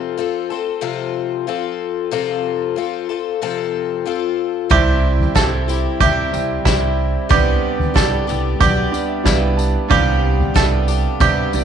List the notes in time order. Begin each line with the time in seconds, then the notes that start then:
Already playing: C3 F3 C4 F4 A4
0.17 F3 C4 F4 A4
0.50 C4 F4 A4
0.81 C3 F3 C4 F4 A4
1.47 F3 C4 F4 A4
2.11 C3 F3 C4 F4 A4
2.76 F3 C4 F4 A4
3.09 C4 F4 A4
3.42 C3 F3 C4 F4 A4
4.06 F3 C4 F4 A4
4.70 C2 C3 G3 C4 E4 G4 C5 E5, kick, floor tom
5.20 floor tom
5.34 C2 G3 C4 E4 G4 A4 C5 E5, kick, snare, tambourine
5.68 C4 E4 G4, tambourine
6.00 C3 G3 C4 E4 G4 C5 E5, kick, floor tom, tambourine
6.32 C2 G3 C4 E4 C5 G5, tambourine
6.65 C2 G3 C4 E4 G4 C5 E5, kick, snare, tambourine
7.29 C2 C3 G3 B3 C4 D4 G4 B4 D5, kick, floor tom
7.79 floor tom
7.94 C2 G3 B3 D4 G4 A4 B4 D5, kick, snare, tambourine
8.27 C2 B3 D4 G4, tambourine
8.60 B1 G3 B3 D4 G4 B4 D5, kick, floor tom, tambourine
8.92 G3 B3 D4 B4 D5, tambourine
9.08 E5
9.23 C2 G3 B3 D4 E4 B4 D5 F5, kick, snare, tambourine
9.28 D4 G4
9.41 G5
9.57 A5, tambourine
9.88 C2 C3 G3 B3 D4 G4 B4 F5, kick, floor tom
10.39 floor tom
10.54 C2 G3 B3 D4 G4 A4 B4 E5, kick, snare, tambourine
10.88 B3 D4 G4, tambourine
11.20 C3 G3 B3 D4 G4 B4 E5, kick, floor tom, tambourine
11.53 C2 G3 B3 D4 B4 D5, tambourine